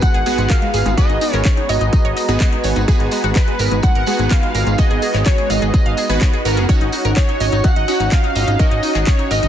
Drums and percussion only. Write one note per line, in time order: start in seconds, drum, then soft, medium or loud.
0.01 kick loud
0.01 closed hi-hat loud
0.01 tambourine medium
0.14 closed hi-hat soft
0.26 open hi-hat loud
0.26 tambourine loud
0.38 closed hi-hat soft
0.38 tambourine soft
0.50 kick loud
0.50 clap loud
0.50 closed hi-hat loud
0.50 tambourine medium
0.62 closed hi-hat soft
0.74 open hi-hat loud
0.74 tambourine medium
0.86 closed hi-hat soft
0.86 tambourine soft
0.97 kick loud
0.97 closed hi-hat medium
0.97 tambourine medium
1.10 closed hi-hat soft
1.21 open hi-hat loud
1.21 tambourine loud
1.33 clap soft
1.33 closed hi-hat soft
1.33 tambourine soft
1.45 kick loud
1.45 clap loud
1.45 closed hi-hat medium
1.45 tambourine medium
1.57 closed hi-hat soft
1.69 open hi-hat loud
1.69 tambourine medium
1.81 closed hi-hat soft
1.81 tambourine soft
1.93 kick loud
1.93 closed hi-hat medium
1.93 tambourine medium
2.05 closed hi-hat soft
2.17 open hi-hat loud
2.17 tambourine medium
2.28 closed hi-hat soft
2.28 tambourine soft
2.40 kick loud
2.40 clap loud
2.40 closed hi-hat loud
2.40 tambourine medium
2.52 closed hi-hat soft
2.64 open hi-hat loud
2.64 tambourine medium
2.76 closed hi-hat soft
2.76 tambourine soft
2.88 kick loud
2.88 closed hi-hat medium
2.88 tambourine medium
3.00 closed hi-hat soft
3.11 open hi-hat loud
3.11 tambourine loud
3.24 closed hi-hat soft
3.24 tambourine soft
3.36 kick loud
3.36 clap loud
3.36 closed hi-hat medium
3.36 tambourine medium
3.48 closed hi-hat soft
3.59 open hi-hat loud
3.59 tambourine loud
3.71 closed hi-hat soft
3.71 tambourine soft
3.82 kick loud
3.82 closed hi-hat medium
3.82 tambourine medium
3.95 closed hi-hat soft
4.06 open hi-hat loud
4.06 tambourine loud
4.19 closed hi-hat soft
4.19 tambourine soft
4.31 kick loud
4.31 clap loud
4.31 closed hi-hat medium
4.31 tambourine medium
4.43 closed hi-hat soft
4.55 open hi-hat loud
4.55 tambourine loud
4.67 closed hi-hat soft
4.67 tambourine soft
4.78 kick loud
4.78 closed hi-hat medium
4.78 tambourine medium
4.91 closed hi-hat soft
5.02 open hi-hat loud
5.02 tambourine medium
5.14 clap soft
5.14 closed hi-hat soft
5.14 tambourine soft
5.26 kick loud
5.26 clap loud
5.26 closed hi-hat medium
5.26 tambourine medium
5.38 closed hi-hat soft
5.50 open hi-hat loud
5.50 tambourine medium
5.62 closed hi-hat soft
5.62 tambourine soft
5.74 kick loud
5.74 closed hi-hat medium
5.74 tambourine medium
5.86 closed hi-hat soft
5.97 open hi-hat loud
5.97 tambourine loud
6.10 closed hi-hat soft
6.10 tambourine soft
6.21 kick loud
6.21 clap loud
6.21 closed hi-hat medium
6.21 tambourine medium
6.33 closed hi-hat soft
6.45 open hi-hat loud
6.45 tambourine medium
6.56 closed hi-hat soft
6.56 tambourine soft
6.69 kick loud
6.69 closed hi-hat medium
6.69 tambourine medium
6.81 closed hi-hat soft
6.92 open hi-hat loud
6.92 tambourine loud
7.05 closed hi-hat soft
7.05 tambourine soft
7.16 kick loud
7.16 clap loud
7.16 closed hi-hat medium
7.16 tambourine medium
7.29 closed hi-hat soft
7.40 open hi-hat loud
7.40 tambourine medium
7.52 closed hi-hat soft
7.52 tambourine soft
7.64 kick loud
7.64 closed hi-hat medium
7.64 tambourine medium
7.76 closed hi-hat soft
7.88 open hi-hat loud
7.88 tambourine medium
8.00 closed hi-hat soft
8.00 tambourine soft
8.12 kick loud
8.12 clap loud
8.12 closed hi-hat medium
8.12 tambourine medium
8.24 closed hi-hat soft
8.36 open hi-hat loud
8.36 tambourine medium
8.48 closed hi-hat soft
8.48 tambourine soft
8.59 kick loud
8.59 closed hi-hat medium
8.59 tambourine soft
8.71 closed hi-hat soft
8.83 open hi-hat loud
8.83 tambourine medium
8.95 clap soft
8.95 closed hi-hat soft
8.95 tambourine soft
9.07 kick loud
9.07 clap loud
9.07 closed hi-hat medium
9.07 tambourine medium
9.19 closed hi-hat soft
9.31 open hi-hat loud
9.31 tambourine loud
9.43 closed hi-hat soft